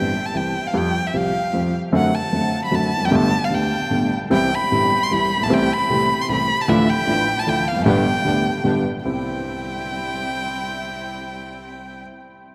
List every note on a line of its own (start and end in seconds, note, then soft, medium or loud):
0.00 0.12 G1 medium
0.00 0.11 G2 medium
0.00 0.11 E3 soft
0.00 0.11 G3 soft
0.00 0.11 C4 soft
0.00 0.12 G4 soft
0.00 0.28 G5 medium
0.26 0.39 A5 medium
0.34 0.51 C2 medium
0.34 0.51 C3 medium
0.34 0.51 E3 soft
0.34 0.51 G3 soft
0.34 0.51 C4 soft
0.34 0.51 G4 soft
0.34 0.69 G5 medium
0.67 0.79 F5 medium
0.73 0.91 F2 medium
0.73 0.91 F3 medium
0.73 0.91 G3 medium
0.73 0.91 C4 medium
0.73 0.91 G4 medium
0.73 1.09 G5 medium
1.07 1.18 E5 medium
1.13 1.30 C2 medium
1.13 1.31 C3 medium
1.13 1.30 F3 soft
1.13 1.31 G3 soft
1.13 1.31 C4 soft
1.13 1.31 G4 medium
1.13 1.75 F5 medium
1.53 1.70 F2 medium
1.53 1.70 F3 medium
1.53 1.70 G3 soft
1.53 1.70 C4 soft
1.53 1.70 G4 medium
1.92 2.10 F#2 medium
1.92 2.09 D3 medium
1.92 2.09 F#3 medium
1.92 2.10 A3 medium
1.92 2.10 C4 medium
1.92 2.10 F#4 medium
1.96 2.17 F#5 medium
2.15 2.63 A5 medium
2.32 2.49 F#2 medium
2.32 2.49 D3 soft
2.32 2.49 F#3 medium
2.32 2.49 A3 soft
2.32 2.49 C4 soft
2.32 2.49 F#4 soft
2.65 2.77 B5 medium
2.71 2.88 F#2 medium
2.71 2.88 D3 soft
2.71 2.88 F#3 medium
2.71 2.88 A3 soft
2.71 2.88 C4 soft
2.71 2.88 F#4 medium
2.75 3.07 A5 medium
2.96 3.02 E2 medium
3.02 3.07 F2 medium
3.02 3.17 G5 medium
3.06 3.12 F#2 medium
3.11 3.28 G1 medium
3.11 3.28 G2 medium
3.11 3.28 D3 medium
3.11 3.28 A3 medium
3.11 3.28 B3 medium
3.11 3.28 G4 medium
3.15 3.46 A5 loud
3.45 3.56 F5 medium
3.50 3.68 D2 medium
3.50 3.68 D3 medium
3.50 3.68 A3 soft
3.50 3.68 B3 soft
3.50 3.68 G4 medium
3.54 4.13 G5 medium
3.90 4.08 G1 medium
3.90 4.08 G2 medium
3.90 4.07 D3 soft
3.90 4.08 A3 soft
3.90 4.08 B3 soft
3.90 4.08 G4 soft
4.30 4.47 C2 medium
4.30 4.48 C3 medium
4.30 4.47 E3 medium
4.30 4.47 G3 medium
4.30 4.48 G3 medium
4.30 4.48 C4 medium
4.30 4.48 E4 medium
4.30 4.48 G4 medium
4.30 4.56 G5 loud
4.54 5.05 B5 loud
4.71 4.88 G1 medium
4.71 4.88 G2 medium
4.71 4.88 E3 soft
4.71 4.88 G3 soft
4.71 4.88 G3 medium
4.71 4.88 C4 soft
4.71 4.88 E4 medium
4.71 4.88 G4 medium
5.03 5.14 C6 medium
5.11 5.28 C2 medium
5.11 5.28 C3 medium
5.11 5.28 E3 soft
5.11 5.28 G3 soft
5.11 5.28 C4 soft
5.11 5.28 E4 medium
5.11 5.28 G4 medium
5.11 5.45 B5 loud
5.36 5.41 A1 medium
5.41 5.46 A#1 medium
5.41 5.55 A5 medium
5.45 5.50 B1 medium
5.50 5.67 C2 medium
5.50 5.67 C3 medium
5.50 5.67 E3 medium
5.50 5.67 A3 medium
5.50 5.67 C4 medium
5.50 5.67 G4 medium
5.54 5.75 G5 loud
5.74 6.23 B5 loud
5.89 6.06 C2 medium
5.89 6.07 C3 medium
5.89 6.06 E3 soft
5.89 6.07 A3 soft
5.89 6.07 C4 soft
5.89 6.07 C4 medium
5.89 6.07 G4 medium
6.22 6.31 C6 medium
6.29 6.46 C2 medium
6.29 6.46 C3 medium
6.29 6.46 C3 soft
6.29 6.46 E3 soft
6.29 6.46 A3 soft
6.29 6.46 C4 soft
6.29 6.46 G4 medium
6.29 6.63 B5 loud
6.62 6.71 A5 medium
6.68 6.85 D2 medium
6.68 6.85 D3 loud
6.68 6.85 E3 medium
6.68 6.85 F3 medium
6.68 6.85 A3 medium
6.68 6.85 D4 medium
6.68 6.85 E4 medium
6.68 6.85 F4 medium
6.68 6.91 E5 loud
6.90 7.41 G5 loud
7.07 7.24 A1 medium
7.07 7.24 A2 medium
7.07 7.24 E3 medium
7.07 7.24 F3 medium
7.07 7.24 A3 soft
7.07 7.24 D4 soft
7.07 7.25 D4 medium
7.07 7.25 E4 medium
7.07 7.24 F4 medium
7.40 7.51 A5 medium
7.46 7.64 D2 medium
7.46 7.64 D3 medium
7.46 7.63 E3 soft
7.46 7.64 F3 medium
7.46 7.63 A3 soft
7.46 7.64 D4 soft
7.46 7.64 E4 medium
7.46 7.64 F4 medium
7.46 7.70 G5 loud
7.68 7.77 E2 medium
7.68 7.87 F5 medium
7.76 7.81 F2 medium
7.82 8.03 G1 medium
7.82 7.87 F#2 medium
7.82 8.02 D3 medium
7.82 8.03 G3 medium
7.82 8.03 B3 medium
7.82 8.03 G4 medium
7.86 8.03 G2 medium
7.86 8.03 G3 medium
7.86 8.03 B3 medium
7.86 8.03 D4 medium
7.86 8.82 G5 loud
8.25 8.42 D2 medium
8.25 8.42 D3 medium
8.25 8.42 G3 soft
8.25 8.42 G3 medium
8.25 8.42 B3 soft
8.25 8.43 B3 medium
8.25 8.43 D4 medium
8.25 8.42 G4 medium
8.64 8.82 G1 medium
8.64 8.82 G2 medium
8.64 8.82 D3 medium
8.64 8.82 G3 soft
8.64 8.82 G3 medium
8.64 8.82 B3 soft
8.64 8.83 B3 soft
8.64 8.83 D4 medium
8.64 8.82 G4 medium
9.05 12.01 C2 medium
9.05 12.01 G3 medium
9.05 12.01 C4 soft
9.05 12.02 C4 medium
9.05 12.01 E4 medium
9.05 12.01 G4 medium
9.05 12.01 G5 medium